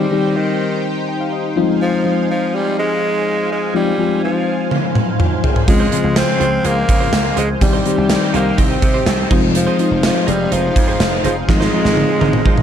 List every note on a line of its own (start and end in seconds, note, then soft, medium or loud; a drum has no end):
0.00 0.38 G3 loud
0.00 5.64 D#4 medium
0.00 1.55 G4 medium
0.00 1.53 C5 medium
0.00 1.55 G5 medium
0.11 0.87 D#3 medium
0.11 0.87 G3 medium
0.11 0.87 C4 medium
0.11 0.87 D#4 medium
0.11 0.87 G4 medium
0.37 0.85 D#3 medium
1.09 1.20 G5 medium
1.21 1.32 F5 medium
1.32 1.78 D#5 medium
1.56 1.95 F3 loud
1.56 1.62 G3 medium
1.56 1.95 C4 medium
1.56 1.95 D#4 medium
1.56 1.96 F4 loud
1.56 12.62 C5 medium
1.56 7.58 F5 medium
1.56 7.58 G#5 medium
1.62 1.98 G#3 medium
1.82 2.26 F3 loud
2.04 2.80 F3 medium
2.04 2.80 G#3 medium
2.04 2.80 C4 medium
2.04 2.81 D#4 medium
2.04 2.81 F4 medium
2.31 2.56 F3 loud
2.55 2.78 G3 loud
2.79 3.47 G#3 loud
3.52 3.74 G#3 medium
3.74 3.93 F3 medium
3.74 4.20 G3 loud
3.74 3.93 G#3 medium
3.74 3.93 C4 medium
3.74 3.93 D#4 medium
3.74 3.94 F4 medium
3.98 4.74 F3 medium
3.98 4.74 G#3 medium
3.98 4.74 C4 medium
3.98 4.74 D#4 medium
3.98 4.74 F4 medium
4.24 4.69 F3 medium
4.71 high tom medium
4.95 mid tom medium
5.19 5.43 F4 medium
5.19 mid tom medium
5.44 5.90 G#4 medium
5.44 floor tom loud
5.56 floor tom loud
5.67 5.85 C#2 loud
5.67 7.59 C#3 medium
5.67 5.87 F3 medium
5.67 5.87 G#3 medium
5.67 6.19 G#3 loud
5.67 5.87 C4 medium
5.67 5.87 C#4 medium
5.67 5.87 F4 medium
5.67 muted clean electric guitar stroke soft
5.67 kick loud
5.67 closed hi-hat loud
5.80 5.91 F4 medium
5.80 5.92 G#4 medium
5.80 5.92 C5 medium
5.92 6.68 C#3 medium
5.92 6.67 F3 medium
5.92 6.67 G#3 medium
5.92 6.68 C4 medium
5.92 6.03 F4 medium
5.92 6.68 F4 medium
5.92 6.03 G#4 medium
5.92 6.03 C5 medium
5.92 closed hi-hat medium
6.04 6.22 C#2 loud
6.04 muted clean electric guitar stroke medium
6.16 6.67 C4 loud
6.16 snare loud
6.16 closed hi-hat loud
6.16 tambourine medium
6.28 muted clean electric guitar stroke soft
6.40 6.58 C#2 loud
6.40 6.54 F4 medium
6.40 6.52 G#4 medium
6.40 6.51 C5 loud
6.40 closed hi-hat medium
6.52 muted clean electric guitar stroke soft
6.64 6.82 C#2 loud
6.64 7.38 A#3 loud
6.64 6.78 F4 medium
6.64 6.77 G#4 loud
6.64 6.75 C5 medium
6.64 closed hi-hat medium
6.77 muted clean electric guitar stroke soft
6.89 7.06 C#3 loud
6.89 muted clean electric guitar stroke medium
6.89 kick loud
6.89 closed hi-hat loud
7.00 7.12 F4 medium
7.00 7.12 G#4 medium
7.00 7.12 C5 medium
7.13 7.30 C#2 loud
7.13 snare loud
7.13 closed hi-hat medium
7.13 tambourine medium
7.25 muted clean electric guitar stroke medium
7.37 7.55 C#2 loud
7.37 7.49 G#3 medium
7.37 7.51 F4 medium
7.37 7.49 G#4 medium
7.37 7.48 C5 loud
7.37 closed hi-hat loud
7.49 muted clean electric guitar stroke soft
7.61 7.79 C2 loud
7.61 7.80 D#3 medium
7.61 7.80 G3 medium
7.61 8.31 G3 loud
7.61 7.80 C4 medium
7.61 9.29 D#4 medium
7.61 7.81 D#4 medium
7.61 9.29 G4 medium
7.61 7.81 G4 medium
7.61 9.29 G5 medium
7.61 muted clean electric guitar stroke soft
7.61 kick loud
7.61 closed hi-hat loud
7.73 7.84 D#4 medium
7.73 7.85 G4 medium
7.73 7.86 C5 medium
7.85 8.61 D#3 medium
7.85 8.61 G3 medium
7.85 8.61 C4 medium
7.85 7.96 D#4 medium
7.85 8.61 D#4 medium
7.85 7.97 G4 medium
7.85 8.62 G4 medium
7.85 7.96 C5 medium
7.85 closed hi-hat medium
7.97 8.15 C2 loud
7.97 muted clean electric guitar stroke soft
8.10 snare loud
8.10 closed hi-hat loud
8.10 tambourine medium
8.22 muted clean electric guitar stroke soft
8.34 8.51 C2 loud
8.34 8.61 A#3 loud
8.34 8.48 D#4 medium
8.34 8.46 G4 loud
8.34 8.45 C5 medium
8.34 closed hi-hat medium
8.46 muted clean electric guitar stroke soft
8.58 8.76 C2 loud
8.58 9.32 C4 loud
8.58 8.72 D#4 medium
8.58 8.70 G4 medium
8.58 8.69 C5 loud
8.58 kick medium
8.58 closed hi-hat medium
8.70 muted clean electric guitar stroke soft
8.82 9.00 C3 loud
8.82 muted clean electric guitar stroke soft
8.82 kick loud
8.82 closed hi-hat medium
8.94 9.05 D#4 medium
8.94 9.06 G4 medium
8.94 9.05 C5 medium
9.06 9.24 C2 medium
9.06 muted clean electric guitar stroke soft
9.06 snare loud
9.06 closed hi-hat medium
9.06 tambourine medium
9.19 muted clean electric guitar stroke soft
9.30 9.66 F1 loud
9.30 9.69 F3 loud
9.30 9.70 G#3 medium
9.30 9.70 C4 medium
9.30 9.44 D#4 medium
9.30 12.62 D#4 medium
9.30 9.70 D#4 medium
9.30 9.70 F4 loud
9.30 12.62 G#4 medium
9.30 9.43 G#4 medium
9.30 9.41 C5 medium
9.30 12.62 F5 medium
9.30 kick loud
9.30 crash medium
9.43 muted clean electric guitar stroke soft
9.55 10.01 F3 loud
9.55 muted clean electric guitar stroke medium
9.55 closed hi-hat loud
9.67 9.77 D#4 medium
9.67 9.78 G#4 medium
9.67 9.79 C5 loud
9.79 10.54 F3 medium
9.79 10.54 G#3 medium
9.79 10.55 C4 medium
9.79 9.90 D#4 medium
9.79 10.55 D#4 medium
9.79 10.55 F4 medium
9.79 9.90 G#4 medium
9.79 9.90 C5 medium
9.79 closed hi-hat medium
9.91 10.09 F1 loud
9.91 muted clean electric guitar stroke soft
10.03 10.30 F3 loud
10.03 snare loud
10.03 closed hi-hat loud
10.03 tambourine medium
10.15 muted clean electric guitar stroke medium
10.27 10.45 F1 loud
10.27 10.54 G3 loud
10.27 10.41 D#4 medium
10.27 10.39 G#4 medium
10.27 10.38 C5 loud
10.27 closed hi-hat medium
10.39 muted clean electric guitar stroke soft
10.51 10.69 F1 loud
10.51 11.24 F3 loud
10.51 10.65 D#4 medium
10.51 10.64 G#4 loud
10.51 10.62 C5 loud
10.51 closed hi-hat medium
10.64 muted clean electric guitar stroke soft
10.76 10.93 F2 loud
10.76 muted clean electric guitar stroke soft
10.76 kick loud
10.76 closed hi-hat loud
10.88 10.99 D#4 medium
10.88 10.99 G#4 medium
10.88 10.99 C5 medium
11.00 11.18 F1 loud
11.00 snare loud
11.00 closed hi-hat medium
11.00 tambourine medium
11.12 muted clean electric guitar stroke medium
11.24 11.42 F1 loud
11.24 11.36 F3 loud
11.24 11.38 D#4 medium
11.24 11.36 G#4 medium
11.24 11.35 C5 medium
11.24 closed hi-hat medium
11.36 muted clean electric guitar stroke soft
11.48 11.66 G#1 loud
11.48 11.67 F3 medium
11.48 11.67 G#3 medium
11.48 12.62 G#3 loud
11.48 11.67 C4 medium
11.48 11.68 D#4 medium
11.48 11.68 F4 medium
11.48 muted clean electric guitar stroke soft
11.48 kick loud
11.48 snare medium
11.60 11.71 D#4 medium
11.60 11.72 F4 medium
11.60 11.73 C5 medium
11.60 snare medium
11.72 12.48 F3 medium
11.72 12.48 G#3 medium
11.72 12.48 C4 medium
11.72 11.83 D#4 medium
11.72 12.48 D#4 medium
11.72 11.84 F4 medium
11.72 12.49 F4 medium
11.72 11.83 C5 medium
11.85 12.02 G#1 loud
11.85 muted clean electric guitar stroke soft
11.85 snare medium
11.97 high tom medium
12.09 muted clean electric guitar stroke medium
12.21 12.39 G#1 loud
12.21 12.35 D#4 medium
12.21 12.33 F4 loud
12.21 12.32 C5 loud
12.21 high tom medium
12.33 muted clean electric guitar stroke medium
12.33 mid tom medium
12.45 12.62 G#1 loud
12.45 12.59 D#4 medium
12.45 12.57 F4 medium
12.45 12.56 C5 loud
12.45 kick loud
12.57 muted clean electric guitar stroke medium
12.57 mid tom medium